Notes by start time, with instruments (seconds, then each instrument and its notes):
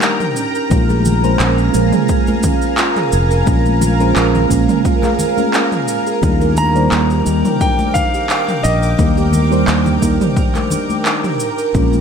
Already playing: fm electric piano D#3 G3 A#3 A#4 C5 D5, ambient pad A#4 G5 A#5
0.02 clap, cabasa
0.20 kalimba A#4, mid tom, cabasa
0.36 kalimba C#4, ambient pad F5 G#5 A#5, cabasa
0.55 cabasa
0.70 fingered electric bass A#1, fm electric piano G#3 A#3 C#4 F4 A#4, kalimba F4, kick, cabasa
0.89 kalimba G#4, high conga, cabasa
1.05 high conga, low conga, cabasa
1.23 fm electric piano G#3 A#3 C#4 F4 C5, kalimba A#4, cabasa
1.40 fingered electric bass A#1, kalimba C#4, clap, cabasa
1.58 cabasa
1.72 fingered electric bass A#1, fm electric piano G#3 A#3 C#4 F4 A#4, kalimba F4, cabasa
1.92 kalimba G#4, mid tom, cabasa
2.08 kick, cabasa
2.27 kalimba A#4, high conga, cabasa
2.43 kalimba C#4, kick, low conga, cabasa
2.62 cabasa
2.78 kalimba F4, clap, cabasa
2.96 kalimba G#4, clap, mid tom, cabasa
3.12 fingered electric bass F1, cabasa
3.31 kalimba A#4, cabasa
3.46 fingered electric bass A#1, fm electric piano G#3 A#3 C#4 F4 A#4, kalimba C#4, kick, cabasa
3.66 high conga, cabasa
3.81 kalimba F4, high conga, low conga, cabasa
3.99 fm electric piano G#3 A#3 C#4 F4 C5, kalimba G#4, cabasa
4.16 fingered electric bass A#1, clap, cabasa
4.35 kalimba A#4, low conga, cabasa
4.49 fingered electric bass A#1, fm electric piano G#3 A#3 C#4 F4 A#4, kalimba C#4, kick, cabasa
4.69 mid tom, cabasa
4.85 kalimba F4, kick, cabasa
5.03 kalimba G#4, clap, high conga, cabasa
5.19 low conga, cabasa
5.36 fm electric piano G#3 A#3 C#4 F4 A#4, kalimba A#4, high conga, cabasa
5.54 kalimba C#4, clap, cabasa
5.72 mid tom, cabasa
5.88 kalimba F4, cabasa
6.07 kalimba G#4, cabasa
6.22 fingered electric bass D#2, fm electric piano G3 A#3 D4 D#4 A#4, ambient pad G5 D6, kick, cabasa
6.41 kalimba A#4, high conga, cabasa
6.57 kalimba D4, grand piano A#5, high conga, low conga, cabasa
6.74 fm electric piano D#3 G3 A#3 C5 D5, cabasa
6.92 fingered electric bass D#2, kalimba D#4, clap, cabasa
7.10 kalimba G4, cabasa
7.24 fingered electric bass D#2, fm electric piano D#3 G3 A#3 A#4 D#5, cabasa
7.45 kalimba A#4, mid tom, cabasa
7.61 kalimba D4, grand piano G5, kick, cabasa
7.79 high conga, cabasa
7.94 kalimba D#4, grand piano F5, kick, low conga, cabasa
8.14 kalimba G4, cabasa
8.30 clap, cabasa
8.48 kalimba A#4, clap, mid tom, cabasa
8.63 fingered electric bass A#1, kalimba D4, grand piano D#5, cabasa
8.83 cabasa
8.98 fingered electric bass D#2, fm electric piano D#3 G3 A#3 A#4 D#5, kalimba D#4, kick, cabasa
9.17 kalimba G4, high conga, cabasa
9.33 high conga, low conga, cabasa
9.51 fm electric piano D#3 G3 A#3 C5 D5, kalimba A#4, cabasa
9.68 fingered electric bass D#2, kalimba D4, clap, cabasa
9.86 low conga, cabasa
10.01 fingered electric bass D#2, fm electric piano D#3 G3 A#3 A#4 D5, kalimba D#4, kick, cabasa
10.21 kalimba G4, mid tom, cabasa
10.37 kick, cabasa
10.55 kalimba A#4, clap, high conga, cabasa
10.70 kalimba D4, low conga, cabasa
10.90 high conga, cabasa
11.05 kalimba D#4, clap, cabasa
11.24 kalimba G4, mid tom, cabasa
11.40 ambient pad F5 G#5 A#5, cabasa
11.58 kalimba A#4, cabasa
11.74 fingered electric bass A#1, fm electric piano G#3 A#3 C#4 F4 A#4, kalimba C#4, kick, cabasa
11.93 high conga, cabasa